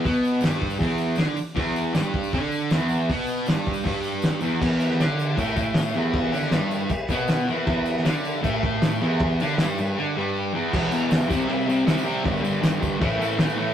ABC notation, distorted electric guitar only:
X:1
M:4/4
L:1/8
Q:1/4=157
K:Em
V:1 name="Distorted electric guitar" clef=bass
[B,,B,]2 [G,,G,]2 [E,,E,]2 [D,D] z | [E,,E,]2 [G,,G,]2 [D,D]2 [E,,E,]2 | [B,,B,]2 [G,,G,]2 [G,,G,]3 [E,,E,] | [E,,E,]2 [D,D]2 [A,,A,]3 [E,,E,]- |
[E,,E,] [D,D] [G,,G,]2 z [B,,B,]2 [E,,E,] | [E,,E,]2 [D,D]2 [A,,A,]3 [E,,E,]- | [E,,E,] [D,D] [G,,G,] [G,,G,] [D,D] [G,,G,]2 [E,,E,] | [E,,B,,E,] [E,,B,,E,] [E,,B,,E,] [C,G,C] [C,G,C] [C,G,C] [C,G,C] [C,G,C] |
[G,,D,G,] [G,,D,G,] [G,,D,G,] [G,,D,G,] [A,,E,A,] [A,,E,A,] [A,,E,A,] [A,,E,A,] |]